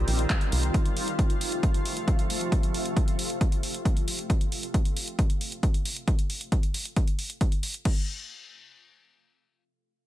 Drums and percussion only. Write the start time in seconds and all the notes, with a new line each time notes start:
0.08 open hi-hat
0.19 closed hi-hat
0.30 kick, clap, closed hi-hat
0.41 closed hi-hat
0.52 open hi-hat
0.63 closed hi-hat
0.74 kick, closed hi-hat
0.85 closed hi-hat
0.97 open hi-hat
1.08 closed hi-hat
1.19 kick, closed hi-hat
1.30 closed hi-hat
1.41 open hi-hat
1.52 closed hi-hat
1.63 kick, closed hi-hat
1.74 closed hi-hat
1.85 open hi-hat
1.97 closed hi-hat
2.08 kick, closed hi-hat
2.19 closed hi-hat
2.30 open hi-hat
2.41 closed hi-hat
2.52 kick, closed hi-hat
2.63 closed hi-hat
2.74 open hi-hat
2.85 closed hi-hat
2.97 kick, closed hi-hat
3.08 closed hi-hat
3.19 open hi-hat
3.30 closed hi-hat
3.41 kick, closed hi-hat
3.52 closed hi-hat
3.63 open hi-hat
3.74 closed hi-hat
3.85 kick, closed hi-hat
3.97 closed hi-hat
4.08 open hi-hat
4.19 closed hi-hat
4.30 kick, closed hi-hat
4.41 closed hi-hat
4.52 open hi-hat
4.63 closed hi-hat
4.74 kick, closed hi-hat
4.85 closed hi-hat
4.96 open hi-hat
5.08 closed hi-hat
5.19 kick, closed hi-hat
5.30 closed hi-hat
5.41 open hi-hat
5.52 closed hi-hat
5.63 kick, closed hi-hat
5.74 closed hi-hat
5.85 open hi-hat
5.96 closed hi-hat
6.08 kick, closed hi-hat
6.19 closed hi-hat
6.30 open hi-hat
6.41 closed hi-hat
6.52 kick, closed hi-hat
6.63 closed hi-hat
6.74 open hi-hat
6.85 closed hi-hat
6.96 kick, closed hi-hat
7.08 closed hi-hat
7.19 open hi-hat
7.30 closed hi-hat
7.41 kick, closed hi-hat
7.52 closed hi-hat
7.63 open hi-hat
7.74 closed hi-hat
7.85 kick, crash